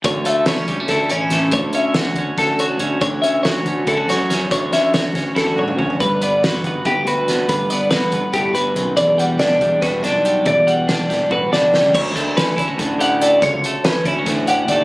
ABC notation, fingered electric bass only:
X:1
M:7/8
L:1/16
Q:1/4=141
K:D
V:1 name="Fingered electric bass" clef=bass
D,,6 D,,2 D,,2 A,,,4 | D,,6 D,, z D,,4 D,,2 | D,,6 D,,2 D,,2 F,,4 | D,,6 D,, z D,,4 D,,2 |
G,,,6 G,,,2 G,,,2 D,,4 | G,,,6 G,,, z G,,,4 B,,,2 | E,,,6 E,,,2 E,,,2 B,,,4 | E,,,6 E,,, z E,,,4 C,,2 |
D,,2 D,,4 D,,2 D,,6 | C,,2 z4 D,,2 D,,4 _E,,2 |]